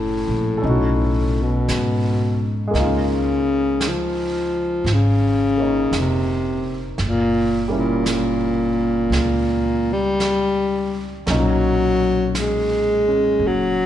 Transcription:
Already playing: upright bass F#1, baritone saxophone A2, grand piano A3 C#4 E4 G#4
0.28 upright bass A#1
0.58 grand piano A4
0.62 upright bass B1, grand piano C#4 D#4, brush sweep
0.69 grand piano F#4
1.43 baritone saxophone B2
1.68 upright bass G#2, brush sweep, snare, hi-hat pedal
2.68 grand piano G#3 A#3
2.74 upright bass C#2, grand piano D#4, brush sweep, snare
2.79 grand piano F4
2.84 baritone saxophone C#3
3.81 brush sweep, snare, hi-hat pedal
3.88 baritone saxophone F3
4.84 upright bass G#1, brush sweep, snare
4.93 baritone saxophone C#3
5.58 grand piano A#3 C#5
5.62 grand piano D#4
5.91 upright bass F1, brush sweep, snare, hi-hat pedal
6.00 baritone saxophone C3
6.98 upright bass F#1, brush sweep, snare
7.07 baritone saxophone A#2
7.68 grand piano G3 A#3 C#4
7.72 grand piano E4
7.79 baritone saxophone A#2
8.06 brush sweep, snare, hi-hat pedal
9.10 upright bass C#2, brush sweep, snare
9.93 baritone saxophone G3
10.20 brush sweep, snare, hi-hat pedal
11.26 upright bass B1, grand piano A#2 F#3 C#4, brush sweep, snare
11.31 baritone saxophone F#3, grand piano D#4
12.35 brush sweep, snare, hi-hat pedal
12.40 baritone saxophone G#3
13.08 grand piano C#4
13.39 upright bass F#1, brush sweep
13.47 baritone saxophone F#3

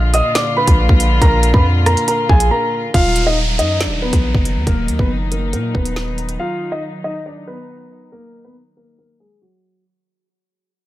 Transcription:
Already playing: 808-style bass A#1, string section A#2 D3 F4
0.14 grand piano D#5 D#6, closed hi-hat
0.35 grand piano D5 D6, snare, closed hi-hat
0.57 grand piano B4 B5
0.67 808-style bass A#1, kick, closed hi-hat
0.89 808-style bass A#1, kick
1.00 closed hi-hat
1.22 808-style bass A#1, grand piano A#4 A#5, kick, closed hi-hat
1.43 closed hi-hat
1.54 808-style bass F2, grand piano B4 B5, kick
1.86 grand piano A#4 A#5, cross-stick, closed hi-hat
1.97 closed hi-hat
2.08 grand piano A#4 A#5, closed hi-hat
2.29 808-style bass A#1, grand piano G#4 G#5, kick
2.40 closed hi-hat
2.51 grand piano A#4 A#5
2.94 808-style bass D#1, string section D#3 F#3 D#4, grand piano F4 F5, kick, closed hi-hat, downlifter
3.16 closed hi-hat
3.27 grand piano D#4 D#5
3.59 808-style bass F#2, grand piano D#4 D#5, closed hi-hat
3.81 grand piano D4 D5, snare, closed hi-hat
3.86 808-style bass D#1
4.02 grand piano B3 B4
4.13 808-style bass A#1, kick, closed hi-hat
4.35 808-style bass F#1, kick
4.45 closed hi-hat
4.56 808-style bass D#2
4.67 808-style bass D#1, grand piano A#3 A#4, kick, closed hi-hat
4.88 808-style bass D#2, closed hi-hat
4.99 808-style bass F#1, grand piano B3 B4, kick
5.32 grand piano A#3 A#4, closed hi-hat
5.53 808-style bass A#2, grand piano A#3 A#4, closed hi-hat
5.75 808-style bass D#1, grand piano B3 B4, kick
5.85 closed hi-hat
5.96 snare
6.18 closed hi-hat
6.29 closed hi-hat
6.39 grand piano F4 F5
6.72 grand piano D#4 D#5
7.04 grand piano D#4 D#5
7.26 grand piano D4 D5
7.47 grand piano B3 B4
8.12 grand piano A#3 A#4
8.44 grand piano B3 B4
8.77 grand piano A#3 A#4
8.98 grand piano A#3 A#4
9.20 grand piano G#3 G#4
9.42 grand piano F#3 F#4

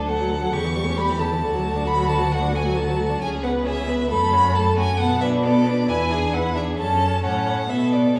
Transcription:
Already playing: cello D2, violin A4
0.08 viola A3, violin F#5
0.20 viola F#3
0.31 viola D3
0.41 viola F#3
0.52 cello E2, viola C#3, violin G4 C#6
0.64 viola E3
0.76 viola G3
0.86 viola C#4
0.97 viola G3, violin B5
1.10 viola E3
1.20 viola C#3, violin A5
1.32 viola E3
1.42 cello D2, viola D3, violin F#4
1.53 viola F#3
1.64 viola A3
1.75 viola D4
1.85 viola A3, violin B5
1.96 viola F#3
2.07 viola D3, violin A5
2.19 viola F#3
2.30 viola A3, violin F#5
2.41 viola D4
2.52 viola A3, violin G#5
2.65 viola F#3
2.76 viola D3, violin A5
2.87 viola F#3
2.98 viola A3
3.10 viola D4
3.21 cello C#2, viola C#4, violin G#4 G#5
3.43 viola B3, violin B4 F#5
3.65 viola C#4, violin G#4 E5
3.87 viola B3, violin B4
4.09 cello F#2, viola A3, violin A4 B5
4.32 viola C#4, violin F#4
4.55 viola A3, violin A4 A5
4.76 viola C#4, violin F#4 G#5
4.98 cello B2, viola B3, violin A4 F#5
5.21 viola D4, violin B4 E5
5.43 viola B3, violin A4 D5
5.66 viola D4, violin B4
5.87 cello E2, viola E4, violin B4 G#5
6.10 viola D4, violin G#4
6.33 viola E4, violin B4 F#5
6.56 viola D4, violin G#4 E5
6.78 cello F#2, viola C#4, violin A4 A5
7.23 cello A2, viola C#4, violin A4 F#5
7.68 cello B2, viola B3, violin A4 E5
7.92 violin D5
8.15 cello E2, violin G#4 C#5

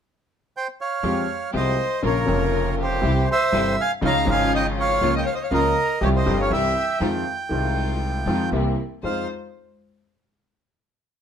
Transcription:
0.57 bandoneon C5 G5
0.81 bandoneon C#5 F5
1.03 upright bass F2, grand piano F2 F3 G#3 C4 G4, string section G#3 F4 G4
1.52 upright bass C2, grand piano C2 C3 F3 G#3 C4 G4, string section G#3 F4 G4, violin C5, bandoneon C5
1.57 bandoneon D#5
2.02 grand piano A#1 A#2 C#3 F3 A#3 F4, upright bass A#1, string section C#4 F4 A#4, bandoneon A#4, violin A#4
2.06 bandoneon C#5
2.25 grand piano F1 F2 C#3 F3 A#3, upright bass F1, string section C#4 F4 A#4
2.30 grand piano F4
2.81 violin G4, bandoneon G4 C5
3.01 grand piano C2 C3 E3 G3 E4, upright bass C2, string section C4 E4 G4
3.31 bandoneon C5 E5, violin C5
3.52 grand piano G1 G2 C3 E3 G3 E4, upright bass G1, string section C4 E4 G4
3.81 bandoneon F5 G#5, violin F5
4.01 grand piano C#2 C#3 F3 G#3 D#4, upright bass C#2, string section C#4 D#4 F4, bandoneon F5
4.06 violin F5, bandoneon A#5
4.25 grand piano G#1 G#2 C#3 F3 G#3 D#4, upright bass G#1, string section C#4 D#4 F4
4.30 bandoneon F5 G#5, violin F5
4.55 bandoneon D#5 G5, violin D#5
4.80 bandoneon C#5 F5, violin C#5
5.01 upright bass C#2, grand piano C#2 C#3 F3 A#3 F4, string section A#3 C#4 F4
5.16 violin D#5, bandoneon G5
5.25 violin C#5, bandoneon F5
5.34 violin C5, bandoneon D#5
5.42 violin C#5, bandoneon F5
5.51 upright bass C#2, grand piano C#2 C#3 F3 A#3 F4, string section A#3 C#4 F4, violin A#4, bandoneon A#4 D#5
6.01 grand piano C2 C3 F3 G3 C4 G4, upright bass C2, string section G3 C4 F4, violin G4, bandoneon G4 C#5
6.16 bandoneon C5 D#5, violin C5
6.26 upright bass G1, grand piano G1 G2 F3 G3 C4 G4, string section G3 C4 F4
6.41 violin C#5, bandoneon C#5 F5
6.50 upright bass C2, grand piano C2 C3 E3 G3 C4 G4, string section G3 C4 E4, bandoneon E5 G5, violin E5
7.00 upright bass F2, grand piano F2 D#3 F3 G#3 C4 F4, string section G#3 D#4 F4
7.49 upright bass C2, grand piano C2 C3 D#3 G#3 C4 F4, string section G#3 D#4 F4
8.26 upright bass F2, grand piano F2 D#3 F3 G#3 C4 F4, string section G#3 D#4 F4
8.52 upright bass C2, grand piano C2 C3 E3 A#3 C4 G4, string section A#3 C4 E4
9.03 upright bass F2, grand piano F2 G#3 D#4 F4, string section G#3 D#4 F4, violin C5, bandoneon F5

